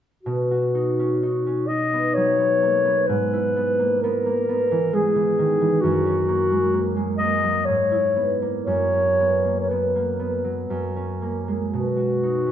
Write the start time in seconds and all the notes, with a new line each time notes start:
0.23 B2 F#4
0.51 F#4
0.75 D#4
0.99 C#4
1.23 D#4
1.47 C#4
1.68 D#4 D#5
1.93 B3
2.14 F#3 C#5
2.39 B3
2.63 A#3
2.85 B3
3.07 G#2 B4
3.33 E4
3.56 B3
3.79 A#3
4.02 B3 A#4
4.26 A#3
4.49 B3
4.71 E3
4.93 G#3 G#4
5.16 E3
5.39 D#3
5.61 E3
5.81 F#2 F#4
6.06 C#4
6.28 A#3
6.51 G#3
6.74 A#3
6.96 G#3
7.18 A#3 D#5
7.43 F#3
7.65 G#2 C#5
7.92 E4
8.16 B3
8.42 A#3
8.65 F#2 C#5
8.93 C#4
9.20 B3
9.45 A#3
9.60 C#5
9.69 B3 B4
9.96 A#3
10.19 B3
10.44 F#3
10.70 F#2
10.96 C#4
11.22 A#3
11.48 G#3
11.72 B2 F#4
11.97 F#4
12.23 D#4
12.46 C#4